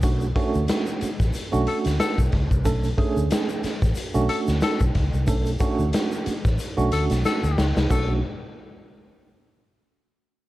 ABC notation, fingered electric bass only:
X:1
M:4/4
L:1/16
Q:"Swing 16ths" 1/4=91
K:Bdor
V:1 name="Fingered electric bass" clef=bass
B,,,2 z D,, z3 A,,, z B,,, z D,, z B,,, C,, =C,, | B,,,2 z D,, z3 A,,, z B,,, z D,, z B,,, C,, =C,, | B,,,2 z D,, z3 A,,, z B,,, D,, B,,, z D,, C,, =C,, | B,,,2 z12 z2 |]